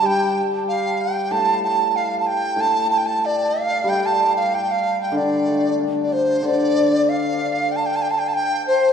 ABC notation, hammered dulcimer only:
X:1
M:2/4
L:1/8
Q:1/4=94
K:none
V:1 name="Hammered dulcimer" clef=bass
G,4 | A,,4 | A,,4 | G,4 |
D, A, D2 | D,4- | D,2 z2 |]